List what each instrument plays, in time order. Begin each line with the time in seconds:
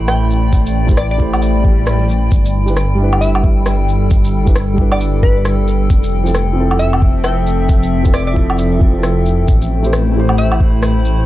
Already playing: detuned saw bass A1, felt piano A3 E4 G4 C5, ambient pad A3 E4 D5 G5 B5
0.08 synth pluck G5, cross-stick, shaker
0.30 shaker
0.53 kick, shaker
0.66 shaker
0.87 felt piano A3 E4 G4 C5, kick, shaker
0.97 synth pluck D5, cross-stick, shaker
1.11 synth pluck D5
1.18 felt piano A3 E4 G4, kick
1.22 felt piano C5
1.34 low woodblock, shaker
1.42 swell, shaker
1.65 kick
1.87 cross-stick, shaker
2.09 shaker
2.31 detuned saw bass G1, ambient pad G3, kick, shaker
2.45 shaker
2.50 ambient pad A4
2.66 felt piano G3 D4 E4, shaker
2.70 felt piano B4
2.77 cross-stick, shaker
2.95 felt piano G3 D4
3.00 felt piano E4 B4
3.13 low woodblock
3.21 synth pluck E5, shaker
3.35 low woodblock
3.44 kick
3.66 cross-stick, shaker
3.88 shaker
4.10 kick, shaker
4.24 shaker
4.45 felt piano G3 D4 E4 B4, kick, shaker
4.56 cross-stick, shaker
4.74 felt piano G3 D4
4.78 felt piano E4 B4, kick
4.92 synth pluck D5, low woodblock
5.00 shaker
5.23 synth pluck B4, kick
5.45 cross-stick, shaker
5.68 shaker
5.89 detuned saw bass F1, ambient pad F3, kick, shaker
6.04 shaker
6.10 ambient pad C4
6.24 felt piano F3 C4 E4, shaker
6.28 felt piano A4
6.35 cross-stick, shaker
6.48 ambient pad E5
6.53 felt piano F3 C4
6.58 felt piano E4 A4
6.71 low woodblock
6.79 synth pluck E5, shaker
6.93 low woodblock
7.02 kick
7.24 synth pluck G5, cross-stick, shaker
7.47 shaker
7.69 kick, shaker
7.83 shaker
8.03 felt piano F3 C4 E4, kick, shaker
8.07 felt piano A4
8.14 synth pluck D5, cross-stick, shaker
8.27 synth pluck D5
8.33 felt piano F3 C4 E4, kick
8.38 felt piano A4
8.50 low woodblock
8.59 shaker
8.79 felt piano F3 C4 E4 A4, kick
8.91 felt piano F3 C4
8.96 felt piano E4 A4
9.03 cross-stick, shaker
9.26 shaker
9.48 detuned saw bass A1, ambient pad A3, kick, shaker
9.59 ambient pad E4 C5, shaker
9.71 ambient pad B5
9.83 felt piano A3 E4 G4 C5, shaker
9.93 cross-stick, shaker
10.12 felt piano A3 E4
10.17 felt piano G4 C5
10.29 low woodblock
10.38 synth pluck E5, shaker
10.52 low woodblock
10.60 kick
10.82 cross-stick, shaker
11.05 shaker